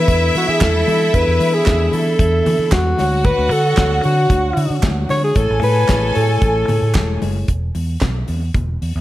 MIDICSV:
0, 0, Header, 1, 6, 480
1, 0, Start_track
1, 0, Tempo, 529101
1, 1030, Time_signature, 4, 2, 24, 8
1, 8173, End_track
2, 0, Start_track
2, 0, Title_t, "String section"
2, 0, Program_c, 0, 48
2, 0, Note_on_c, 0, 64, 102
2, 0, Note_on_c, 0, 76, 126
2, 2427, Note_off_c, 0, 64, 0
2, 2430, Note_off_c, 0, 76, 0
2, 2700, Note_on_c, 0, 66, 93
2, 2701, Note_on_c, 0, 78, 104
2, 4584, Note_off_c, 0, 66, 0
2, 4585, Note_off_c, 0, 78, 0
2, 4851, Note_on_c, 0, 80, 112
2, 4852, Note_on_c, 0, 69, 97
2, 6506, Note_off_c, 0, 80, 0
2, 6507, Note_off_c, 0, 69, 0
2, 8173, End_track
3, 0, Start_track
3, 0, Title_t, "Alto saxophone"
3, 0, Program_c, 1, 65
3, 0, Note_on_c, 1, 71, 107
3, 326, Note_off_c, 1, 71, 0
3, 336, Note_on_c, 1, 66, 78
3, 451, Note_on_c, 1, 68, 93
3, 464, Note_off_c, 1, 66, 0
3, 566, Note_on_c, 1, 69, 103
3, 580, Note_off_c, 1, 68, 0
3, 1036, Note_on_c, 1, 71, 118
3, 1050, Note_off_c, 1, 69, 0
3, 1397, Note_on_c, 1, 68, 101
3, 1411, Note_off_c, 1, 71, 0
3, 1759, Note_on_c, 1, 69, 105
3, 1772, Note_off_c, 1, 68, 0
3, 2471, Note_on_c, 1, 66, 94
3, 2485, Note_off_c, 1, 69, 0
3, 2954, Note_on_c, 1, 71, 105
3, 2967, Note_off_c, 1, 66, 0
3, 3193, Note_on_c, 1, 69, 103
3, 3206, Note_off_c, 1, 71, 0
3, 3668, Note_off_c, 1, 69, 0
3, 3674, Note_on_c, 1, 66, 82
3, 4348, Note_off_c, 1, 66, 0
3, 4628, Note_on_c, 1, 73, 96
3, 4737, Note_off_c, 1, 73, 0
3, 4755, Note_on_c, 1, 68, 103
3, 4867, Note_on_c, 1, 69, 104
3, 4881, Note_off_c, 1, 68, 0
3, 5105, Note_off_c, 1, 69, 0
3, 5109, Note_on_c, 1, 71, 104
3, 5553, Note_off_c, 1, 71, 0
3, 5590, Note_on_c, 1, 69, 85
3, 6513, Note_off_c, 1, 69, 0
3, 8173, End_track
4, 0, Start_track
4, 0, Title_t, "Tine electric piano"
4, 0, Program_c, 2, 4
4, 0, Control_c, 2, 64, 127
4, 0, Note_on_c, 2, 52, 71
4, 0, Note_on_c, 2, 59, 67
4, 0, Note_on_c, 2, 62, 63
4, 0, Note_on_c, 2, 69, 76
4, 512, Note_off_c, 2, 52, 0
4, 513, Note_off_c, 2, 59, 0
4, 517, Note_off_c, 2, 62, 0
4, 519, Note_off_c, 2, 69, 0
4, 1025, Note_on_c, 2, 52, 76
4, 1027, Note_on_c, 2, 59, 78
4, 1035, Note_on_c, 2, 62, 70
4, 1036, Note_on_c, 2, 68, 67
4, 1090, Note_off_c, 2, 68, 0
4, 1095, Note_on_c, 2, 69, 89
4, 1368, Note_off_c, 2, 52, 0
4, 1370, Note_off_c, 2, 59, 0
4, 1374, Note_off_c, 2, 62, 0
4, 1404, Note_off_c, 2, 69, 0
4, 1495, Note_on_c, 2, 52, 73
4, 1501, Note_on_c, 2, 59, 77
4, 1506, Note_on_c, 2, 62, 69
4, 1513, Note_on_c, 2, 69, 81
4, 1672, Note_off_c, 2, 52, 0
4, 1676, Note_off_c, 2, 59, 0
4, 1678, Note_off_c, 2, 62, 0
4, 1681, Note_off_c, 2, 69, 0
4, 1740, Note_on_c, 2, 52, 75
4, 1742, Note_on_c, 2, 59, 60
4, 1750, Note_on_c, 2, 62, 68
4, 1752, Note_on_c, 2, 69, 76
4, 2426, Note_off_c, 2, 52, 0
4, 2428, Note_off_c, 2, 59, 0
4, 2432, Note_off_c, 2, 62, 0
4, 2433, Note_off_c, 2, 69, 0
4, 2706, Note_on_c, 2, 50, 82
4, 2709, Note_on_c, 2, 62, 67
4, 2716, Control_c, 2, 64, 0
4, 2716, Note_on_c, 2, 66, 74
4, 2718, Note_on_c, 2, 73, 89
4, 2883, Control_c, 2, 64, 127
4, 3281, Note_off_c, 2, 50, 0
4, 3282, Note_off_c, 2, 62, 0
4, 3286, Note_off_c, 2, 66, 0
4, 3287, Note_off_c, 2, 73, 0
4, 3413, Note_on_c, 2, 50, 72
4, 3419, Note_on_c, 2, 62, 72
4, 3422, Note_on_c, 2, 66, 75
4, 3424, Note_on_c, 2, 73, 80
4, 3590, Note_off_c, 2, 50, 0
4, 3592, Note_off_c, 2, 62, 0
4, 3594, Note_off_c, 2, 66, 0
4, 3595, Note_off_c, 2, 73, 0
4, 3657, Note_on_c, 2, 50, 74
4, 3668, Note_on_c, 2, 62, 68
4, 3668, Note_on_c, 2, 66, 72
4, 3675, Note_on_c, 2, 73, 76
4, 4344, Note_off_c, 2, 50, 0
4, 4350, Note_off_c, 2, 62, 0
4, 4350, Note_off_c, 2, 66, 0
4, 4353, Note_off_c, 2, 73, 0
4, 4855, Note_on_c, 2, 57, 73
4, 4864, Note_on_c, 2, 64, 70
4, 4866, Note_on_c, 2, 68, 68
4, 4870, Note_on_c, 2, 73, 85
4, 4876, Control_c, 2, 64, 0
4, 5055, Control_c, 2, 64, 127
4, 5201, Note_off_c, 2, 57, 0
4, 5206, Note_off_c, 2, 64, 0
4, 5207, Note_off_c, 2, 68, 0
4, 5209, Note_off_c, 2, 73, 0
4, 5331, Note_on_c, 2, 57, 74
4, 5338, Note_on_c, 2, 64, 66
4, 5343, Note_on_c, 2, 68, 72
4, 5346, Note_on_c, 2, 73, 93
4, 5508, Note_off_c, 2, 57, 0
4, 5512, Note_off_c, 2, 64, 0
4, 5515, Note_off_c, 2, 68, 0
4, 5516, Note_off_c, 2, 73, 0
4, 5565, Note_on_c, 2, 57, 68
4, 5577, Note_on_c, 2, 64, 71
4, 5579, Note_on_c, 2, 69, 68
4, 5580, Note_on_c, 2, 73, 86
4, 6260, Note_off_c, 2, 57, 0
4, 6266, Note_off_c, 2, 64, 0
4, 6267, Note_off_c, 2, 69, 0
4, 6268, Note_off_c, 2, 73, 0
4, 6799, Control_c, 2, 64, 0
4, 8173, End_track
5, 0, Start_track
5, 0, Title_t, "Fingered electric bass"
5, 0, Program_c, 3, 33
5, 75, Note_on_c, 3, 40, 100
5, 263, Note_off_c, 3, 40, 0
5, 319, Note_on_c, 3, 52, 100
5, 411, Note_off_c, 3, 52, 0
5, 441, Note_on_c, 3, 52, 86
5, 532, Note_off_c, 3, 52, 0
5, 556, Note_on_c, 3, 40, 95
5, 743, Note_off_c, 3, 40, 0
5, 798, Note_on_c, 3, 52, 104
5, 984, Note_off_c, 3, 52, 0
5, 1035, Note_on_c, 3, 40, 104
5, 1127, Note_off_c, 3, 40, 0
5, 1158, Note_on_c, 3, 40, 91
5, 1249, Note_off_c, 3, 40, 0
5, 1276, Note_on_c, 3, 52, 88
5, 1462, Note_off_c, 3, 52, 0
5, 1519, Note_on_c, 3, 40, 99
5, 1704, Note_off_c, 3, 40, 0
5, 1756, Note_on_c, 3, 52, 102
5, 1942, Note_off_c, 3, 52, 0
5, 1991, Note_on_c, 3, 40, 94
5, 2179, Note_off_c, 3, 40, 0
5, 2234, Note_on_c, 3, 52, 97
5, 2326, Note_off_c, 3, 52, 0
5, 2351, Note_on_c, 3, 52, 90
5, 2444, Note_off_c, 3, 52, 0
5, 2470, Note_on_c, 3, 40, 106
5, 2658, Note_off_c, 3, 40, 0
5, 2719, Note_on_c, 3, 38, 94
5, 2998, Note_off_c, 3, 38, 0
5, 3068, Note_on_c, 3, 38, 112
5, 3161, Note_off_c, 3, 38, 0
5, 3196, Note_on_c, 3, 50, 88
5, 3381, Note_off_c, 3, 50, 0
5, 3430, Note_on_c, 3, 38, 105
5, 3617, Note_off_c, 3, 38, 0
5, 3677, Note_on_c, 3, 50, 87
5, 3861, Note_off_c, 3, 50, 0
5, 3902, Note_on_c, 3, 38, 92
5, 4092, Note_off_c, 3, 38, 0
5, 4146, Note_on_c, 3, 50, 95
5, 4240, Note_off_c, 3, 50, 0
5, 4266, Note_on_c, 3, 50, 94
5, 4360, Note_off_c, 3, 50, 0
5, 4382, Note_on_c, 3, 38, 111
5, 4572, Note_off_c, 3, 38, 0
5, 4630, Note_on_c, 3, 50, 90
5, 4817, Note_off_c, 3, 50, 0
5, 4862, Note_on_c, 3, 33, 110
5, 4958, Note_off_c, 3, 33, 0
5, 4992, Note_on_c, 3, 33, 108
5, 5083, Note_off_c, 3, 33, 0
5, 5105, Note_on_c, 3, 45, 93
5, 5294, Note_off_c, 3, 45, 0
5, 5347, Note_on_c, 3, 33, 95
5, 5535, Note_off_c, 3, 33, 0
5, 5591, Note_on_c, 3, 45, 98
5, 5778, Note_off_c, 3, 45, 0
5, 5825, Note_on_c, 3, 33, 106
5, 6015, Note_off_c, 3, 33, 0
5, 6069, Note_on_c, 3, 45, 95
5, 6163, Note_off_c, 3, 45, 0
5, 6188, Note_on_c, 3, 45, 90
5, 6282, Note_off_c, 3, 45, 0
5, 6310, Note_on_c, 3, 28, 90
5, 6498, Note_off_c, 3, 28, 0
5, 6553, Note_on_c, 3, 30, 89
5, 6740, Note_off_c, 3, 30, 0
5, 6791, Note_on_c, 3, 28, 94
5, 6980, Note_off_c, 3, 28, 0
5, 7031, Note_on_c, 3, 40, 75
5, 7220, Note_off_c, 3, 40, 0
5, 7275, Note_on_c, 3, 35, 77
5, 7463, Note_off_c, 3, 35, 0
5, 7517, Note_on_c, 3, 40, 95
5, 7705, Note_off_c, 3, 40, 0
5, 7754, Note_on_c, 3, 28, 88
5, 7944, Note_off_c, 3, 28, 0
5, 8000, Note_on_c, 3, 40, 80
5, 8092, Note_off_c, 3, 40, 0
5, 8125, Note_on_c, 3, 40, 87
5, 8173, Note_off_c, 3, 40, 0
5, 8173, End_track
6, 0, Start_track
6, 0, Title_t, "Drums"
6, 72, Note_on_c, 9, 62, 57
6, 73, Note_on_c, 9, 36, 120
6, 75, Note_on_c, 9, 42, 76
6, 163, Note_off_c, 9, 62, 0
6, 164, Note_off_c, 9, 36, 0
6, 166, Note_off_c, 9, 42, 0
6, 317, Note_on_c, 9, 62, 34
6, 318, Note_on_c, 9, 46, 68
6, 408, Note_off_c, 9, 46, 0
6, 408, Note_off_c, 9, 62, 0
6, 550, Note_on_c, 9, 39, 100
6, 553, Note_on_c, 9, 42, 66
6, 555, Note_on_c, 9, 36, 101
6, 558, Note_on_c, 9, 63, 75
6, 560, Note_on_c, 9, 38, 110
6, 641, Note_off_c, 9, 39, 0
6, 644, Note_off_c, 9, 42, 0
6, 646, Note_off_c, 9, 36, 0
6, 648, Note_off_c, 9, 63, 0
6, 651, Note_off_c, 9, 38, 0
6, 793, Note_on_c, 9, 63, 87
6, 802, Note_on_c, 9, 46, 60
6, 884, Note_off_c, 9, 63, 0
6, 892, Note_off_c, 9, 46, 0
6, 1034, Note_on_c, 9, 36, 110
6, 1034, Note_on_c, 9, 42, 69
6, 1125, Note_off_c, 9, 36, 0
6, 1125, Note_off_c, 9, 42, 0
6, 1273, Note_on_c, 9, 62, 49
6, 1275, Note_on_c, 9, 46, 65
6, 1363, Note_off_c, 9, 62, 0
6, 1366, Note_off_c, 9, 46, 0
6, 1501, Note_on_c, 9, 39, 73
6, 1513, Note_on_c, 9, 38, 95
6, 1516, Note_on_c, 9, 42, 65
6, 1516, Note_on_c, 9, 63, 81
6, 1517, Note_on_c, 9, 36, 125
6, 1592, Note_off_c, 9, 39, 0
6, 1604, Note_off_c, 9, 38, 0
6, 1606, Note_off_c, 9, 42, 0
6, 1606, Note_off_c, 9, 63, 0
6, 1608, Note_off_c, 9, 36, 0
6, 1751, Note_on_c, 9, 46, 62
6, 1841, Note_off_c, 9, 46, 0
6, 1989, Note_on_c, 9, 36, 117
6, 1990, Note_on_c, 9, 62, 48
6, 1993, Note_on_c, 9, 42, 71
6, 2080, Note_off_c, 9, 36, 0
6, 2081, Note_off_c, 9, 62, 0
6, 2084, Note_off_c, 9, 42, 0
6, 2231, Note_on_c, 9, 64, 75
6, 2234, Note_on_c, 9, 46, 64
6, 2322, Note_off_c, 9, 64, 0
6, 2325, Note_off_c, 9, 46, 0
6, 2463, Note_on_c, 9, 39, 99
6, 2465, Note_on_c, 9, 42, 58
6, 2468, Note_on_c, 9, 36, 114
6, 2472, Note_on_c, 9, 38, 113
6, 2474, Note_on_c, 9, 63, 86
6, 2554, Note_off_c, 9, 39, 0
6, 2556, Note_off_c, 9, 42, 0
6, 2558, Note_off_c, 9, 36, 0
6, 2563, Note_off_c, 9, 38, 0
6, 2565, Note_off_c, 9, 63, 0
6, 2708, Note_on_c, 9, 63, 76
6, 2713, Note_on_c, 9, 46, 66
6, 2714, Note_on_c, 9, 38, 42
6, 2799, Note_off_c, 9, 63, 0
6, 2804, Note_off_c, 9, 46, 0
6, 2805, Note_off_c, 9, 38, 0
6, 2945, Note_on_c, 9, 42, 64
6, 2946, Note_on_c, 9, 36, 114
6, 3035, Note_off_c, 9, 42, 0
6, 3036, Note_off_c, 9, 36, 0
6, 3184, Note_on_c, 9, 62, 41
6, 3186, Note_on_c, 9, 46, 63
6, 3275, Note_off_c, 9, 62, 0
6, 3277, Note_off_c, 9, 46, 0
6, 3416, Note_on_c, 9, 39, 69
6, 3421, Note_on_c, 9, 63, 84
6, 3425, Note_on_c, 9, 38, 113
6, 3427, Note_on_c, 9, 36, 119
6, 3427, Note_on_c, 9, 42, 74
6, 3507, Note_off_c, 9, 39, 0
6, 3512, Note_off_c, 9, 63, 0
6, 3516, Note_off_c, 9, 38, 0
6, 3517, Note_off_c, 9, 36, 0
6, 3518, Note_off_c, 9, 42, 0
6, 3661, Note_on_c, 9, 46, 59
6, 3752, Note_off_c, 9, 46, 0
6, 3900, Note_on_c, 9, 36, 118
6, 3901, Note_on_c, 9, 42, 72
6, 3903, Note_on_c, 9, 62, 56
6, 3991, Note_off_c, 9, 36, 0
6, 3992, Note_off_c, 9, 42, 0
6, 3994, Note_off_c, 9, 62, 0
6, 4145, Note_on_c, 9, 46, 67
6, 4236, Note_off_c, 9, 46, 0
6, 4378, Note_on_c, 9, 42, 63
6, 4379, Note_on_c, 9, 39, 99
6, 4382, Note_on_c, 9, 36, 119
6, 4386, Note_on_c, 9, 38, 107
6, 4386, Note_on_c, 9, 63, 89
6, 4469, Note_off_c, 9, 39, 0
6, 4469, Note_off_c, 9, 42, 0
6, 4473, Note_off_c, 9, 36, 0
6, 4476, Note_off_c, 9, 38, 0
6, 4477, Note_off_c, 9, 63, 0
6, 4619, Note_on_c, 9, 63, 85
6, 4627, Note_on_c, 9, 46, 67
6, 4628, Note_on_c, 9, 38, 36
6, 4710, Note_off_c, 9, 63, 0
6, 4718, Note_off_c, 9, 46, 0
6, 4719, Note_off_c, 9, 38, 0
6, 4858, Note_on_c, 9, 42, 68
6, 4861, Note_on_c, 9, 36, 106
6, 4948, Note_off_c, 9, 42, 0
6, 4951, Note_off_c, 9, 36, 0
6, 5098, Note_on_c, 9, 62, 50
6, 5106, Note_on_c, 9, 46, 63
6, 5189, Note_off_c, 9, 62, 0
6, 5197, Note_off_c, 9, 46, 0
6, 5335, Note_on_c, 9, 39, 66
6, 5342, Note_on_c, 9, 63, 85
6, 5344, Note_on_c, 9, 38, 105
6, 5346, Note_on_c, 9, 42, 67
6, 5347, Note_on_c, 9, 36, 118
6, 5426, Note_off_c, 9, 39, 0
6, 5432, Note_off_c, 9, 63, 0
6, 5435, Note_off_c, 9, 38, 0
6, 5437, Note_off_c, 9, 36, 0
6, 5437, Note_off_c, 9, 42, 0
6, 5580, Note_on_c, 9, 46, 66
6, 5671, Note_off_c, 9, 46, 0
6, 5820, Note_on_c, 9, 62, 52
6, 5822, Note_on_c, 9, 36, 127
6, 5824, Note_on_c, 9, 42, 67
6, 5911, Note_off_c, 9, 62, 0
6, 5913, Note_off_c, 9, 36, 0
6, 5915, Note_off_c, 9, 42, 0
6, 6063, Note_on_c, 9, 64, 73
6, 6070, Note_on_c, 9, 46, 63
6, 6154, Note_off_c, 9, 64, 0
6, 6160, Note_off_c, 9, 46, 0
6, 6298, Note_on_c, 9, 39, 104
6, 6301, Note_on_c, 9, 42, 66
6, 6307, Note_on_c, 9, 36, 122
6, 6309, Note_on_c, 9, 38, 111
6, 6313, Note_on_c, 9, 63, 73
6, 6389, Note_off_c, 9, 39, 0
6, 6392, Note_off_c, 9, 42, 0
6, 6397, Note_off_c, 9, 36, 0
6, 6400, Note_off_c, 9, 38, 0
6, 6404, Note_off_c, 9, 63, 0
6, 6549, Note_on_c, 9, 63, 81
6, 6553, Note_on_c, 9, 46, 62
6, 6639, Note_off_c, 9, 63, 0
6, 6644, Note_off_c, 9, 46, 0
6, 6788, Note_on_c, 9, 42, 55
6, 6790, Note_on_c, 9, 36, 91
6, 6878, Note_off_c, 9, 42, 0
6, 6880, Note_off_c, 9, 36, 0
6, 7028, Note_on_c, 9, 62, 38
6, 7030, Note_on_c, 9, 46, 56
6, 7119, Note_off_c, 9, 62, 0
6, 7121, Note_off_c, 9, 46, 0
6, 7262, Note_on_c, 9, 39, 63
6, 7271, Note_on_c, 9, 38, 93
6, 7273, Note_on_c, 9, 42, 60
6, 7274, Note_on_c, 9, 36, 97
6, 7274, Note_on_c, 9, 63, 72
6, 7353, Note_off_c, 9, 39, 0
6, 7362, Note_off_c, 9, 38, 0
6, 7364, Note_off_c, 9, 42, 0
6, 7364, Note_off_c, 9, 63, 0
6, 7365, Note_off_c, 9, 36, 0
6, 7509, Note_on_c, 9, 46, 49
6, 7600, Note_off_c, 9, 46, 0
6, 7752, Note_on_c, 9, 36, 105
6, 7752, Note_on_c, 9, 42, 64
6, 7754, Note_on_c, 9, 62, 45
6, 7754, Note_on_c, 9, 64, 60
6, 7842, Note_off_c, 9, 42, 0
6, 7843, Note_off_c, 9, 36, 0
6, 7845, Note_off_c, 9, 62, 0
6, 7845, Note_off_c, 9, 64, 0
6, 8002, Note_on_c, 9, 46, 61
6, 8093, Note_off_c, 9, 46, 0
6, 8173, End_track
0, 0, End_of_file